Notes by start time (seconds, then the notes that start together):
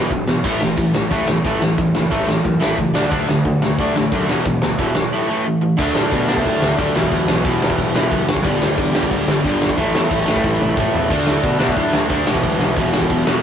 Already playing: E3
0.10 E1 E2 B2, kick, open hi-hat
0.27 E1 E2 B2, snare
0.44 A1 A2 E3 A3, kick, crash
0.61 A1 A2 E3, snare
0.77 A1 A2 E3, kick, open hi-hat
0.94 A1 A2 E3, snare
1.11 A1 A2 E3 A3, kick, open hi-hat
1.28 E1 A2 E3, snare
1.44 A1 A2 E3 A3, kick, open hi-hat
1.61 A1 A2 E3, snare
1.78 A1 A2 E3, kick, open hi-hat
1.95 F#1 A2 E3, snare
2.11 A1 A2 E3 A3, kick, open hi-hat
2.27 A2 E3, snare
2.44 F#2 A2 E3, kick, open hi-hat
2.60 A1 A2 E3 A3, snare
2.77 C#2 A2 E3, kick, open hi-hat
2.94 D2 D3 A3 D4, snare
3.11 D2 D3 A3 D4, kick, open hi-hat
3.28 D2 D3 A3, snare
3.45 D2 D3 A3, kick, open hi-hat
3.62 D2 D3 A3, snare
3.78 D2 D3 A3 D4, kick, open hi-hat
3.96 A1 D3 A3, snare
4.11 F#2 D3 A3 D4, kick, open hi-hat
4.29 E1 E2 B2 E3, snare
4.45 E1 E2 B2, kick, open hi-hat
4.62 D2 E2 B2, snare
4.78 E1 E2 B2 E3, kick, open hi-hat
4.95 E2 B2, snare
5.13 A2 E3 A3
5.29 A2 E3 A3
5.46 A2 E3
5.62 A2 E3
5.77 D2 D3 A3, kick, crash
5.81 D4
5.95 A2, snare
6.11 B2, kick, crash
6.28 D3 A3 D4, snare
6.37 kick
6.45 A2, kick, crash
6.62 D2, snare
6.77 D2 D3 A3 D4, kick, crash
6.94 E1 E2 B2 E3, snare
7.03 kick
7.12 D2, kick, crash
7.28 B1, snare
7.43 E1 E2 B2 E3, kick, crash
7.62 snare
7.70 kick
7.78 E1, kick, crash
7.93 E1 E2 B2 E3, snare
8.11 F#1, kick, crash
8.29 snare
8.36 kick
8.43 G1 G2 D3 G3, kick, crash
8.62 D2, snare
8.78 E2, kick, crash
8.92 G2 D3 G3, snare
9.03 kick
9.11 D2, kick, crash
9.27 G1, snare
9.43 G1 G2 D3 G3, kick, crash
9.62 snare
9.69 kick
9.76 A1 A2 E3 A3, kick, crash
9.94 E2, snare
10.11 A1, kick, crash
10.26 A2 E3 A3, snare
10.36 kick
10.44 A1, kick, snare
10.60 A1, high tom
10.76 A1 A2 E3 A3, kick, mid tom
10.94 floor tom
11.09 D2 D3 A3, kick, crash
11.13 D4
11.27 A2, snare
11.44 B2, kick, crash
11.59 D3 A3 D4, snare
11.69 kick
11.76 A2, kick, crash
11.93 D2, snare
12.08 D2 D3 A3, kick, crash
12.12 D4
12.25 E1 E2 B2 E3, snare
12.35 kick
12.43 D2, kick, crash
12.59 B1, snare
12.76 E1 E2 B2 E3, kick, crash
12.94 snare
13.02 kick
13.10 E1, kick, crash
13.25 E1 E2 B2 E3, snare